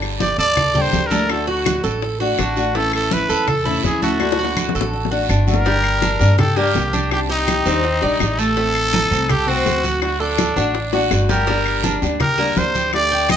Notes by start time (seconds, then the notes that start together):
Already playing: G1 D3 G3 A#3 D4 A4
0.02 high bongo, high conga, claves
0.20 G4 D5, high bongo, high conga, short guiro
0.38 D2 A4 D5, high conga, short guiro
0.57 muted nylon-string guitar stroke, high bongo, high conga, low conga, long guiro, claves
0.74 G3 A#3 D4 G4 A4, high bongo, high conga, low conga
0.82 C5
0.92 D2 G3 A#3 D4 A4, high bongo, low bongo, high conga, short guiro
1.06 A#4
1.11 G3 A3 A#3 D4 A4, high bongo, high conga, short guiro
1.29 D3 A3 D4 F#4 A4, high bongo, high conga, long guiro, claves
1.47 F#4, high bongo, high conga
1.66 high bongo, high conga, short guiro, claves
1.84 A1 A4, short guiro
2.02 muted nylon-string guitar stroke, high bongo, high conga, long guiro
2.20 A3 D4 F#4, high bongo, high conga
2.38 A1 D3 A3 D4 F#4, high bongo, low bongo, high conga, short guiro, claves
2.57 A3 D4 F#4, high bongo, short guiro
2.75 E3 A3 C#4 E4 A4, high bongo, high conga, long guiro
2.93 A4, high bongo, high conga, claves
3.11 E4 B4, high bongo, high conga, short guiro
3.29 E2 A4, high conga, short guiro
3.48 A4, muted nylon-string guitar stroke, high bongo, high conga, low conga, long guiro, claves
3.65 A3 C#4 E4, high bongo, high conga, low conga
3.83 D2 E3 A3 C#4 E4 G#4, high bongo, low bongo, high conga, short guiro
4.02 A3 C#4 E4 F#4, high bongo, high conga, short guiro
4.19 D3 A3 D4 F#4, high bongo, high conga, long guiro, claves
4.32 high bongo
4.39 F#4, high conga
4.44 high bongo
4.57 high conga, short guiro, claves
4.69 low bongo
4.75 A1 A4, short guiro
4.81 low bongo
4.93 muted nylon-string guitar stroke, high conga, long guiro
5.05 low bongo
5.11 A3 D4 F#4, high conga
5.29 G1 D3 A3 D4 F#4, high conga, short guiro, claves
5.47 A3 D4 F#4 A#4, high conga, short guiro
5.54 low bongo
5.65 D3 G3 A#3 D4 G4, high bongo, long guiro
5.84 high conga, claves
6.02 D4, high bongo, high conga, short guiro
6.19 G2 G3 A#3 D4 G4, high bongo, high conga, short guiro
6.38 G4 A4, muted nylon-string guitar stroke, high bongo, high conga, low conga, long guiro, claves
6.56 G3 A#3 D4 G4, high bongo, high conga
6.74 C2 G3 A#3 D4 G4, high bongo, low bongo, high conga, short guiro
6.93 D4, high bongo, high conga, short guiro
7.11 C3 D#3 G3 G4, high bongo, high conga, long guiro, claves
7.29 D#4 G4, high conga
7.48 high bongo, high conga, short guiro, claves
7.65 D#2 D#3 G3 C4 D4 G4, high bongo, high conga, short guiro
7.84 muted nylon-string guitar stroke, high bongo, high conga, long guiro
8.02 A#1 D#3 G3 D4 G4 D5, high bongo, high conga
8.20 A1 D#3 G3 D4 G4, high bongo, low bongo, high conga, short guiro, claves
8.39 A3 A4, high bongo, short guiro
8.56 D#3 A3 C4, high bongo, high conga, long guiro
8.75 high conga, claves
8.93 D#4, high bongo, high conga, short guiro
9.11 C2 A3 C4, high bongo, high conga, short guiro
9.29 G4 A4, high bongo, high conga, low conga, long guiro, claves
9.47 A3 C4 F#4, high bongo, high conga
9.66 D2 A3 C4, high bongo, low bongo, high conga, short guiro
9.84 F#4, high bongo, high conga, short guiro
10.01 D3 A3 D4 F#4, high bongo, high conga, long guiro, claves
10.20 D4 A4, high conga
10.38 high bongo, high conga, short guiro, claves
10.56 A1 A3 D4 F#4, high bongo, high conga, short guiro
10.75 muted nylon-string guitar stroke, high bongo, high conga, long guiro
10.93 A3 D4 F#4, high bongo, high conga
11.11 G1 D3 A3 D4 F#4, low bongo, short guiro, claves
11.29 G3 A#4, low bongo, high conga, short guiro
11.47 D3 G3 A#3 D4 G4, high bongo, high conga, long guiro
11.66 high conga, claves
11.84 D4, high bongo, high conga, short guiro
12.02 D2 G3 A#3 D4 G4, high bongo, high conga, short guiro
12.20 G4 A#4, muted nylon-string guitar stroke, high bongo, high conga, low conga, long guiro, claves
12.38 G3 A#3 D4 G4, high bongo, high conga
12.56 D2 G3 A#3 D4 G4 C5, high bongo, low bongo, high conga, short guiro
12.75 G4, high bongo, high conga, short guiro
12.93 D3 A3 D4 G4 D5, high bongo, high conga, long guiro, claves
13.11 G4, high conga
13.29 D#5, high bongo, high conga, short guiro, claves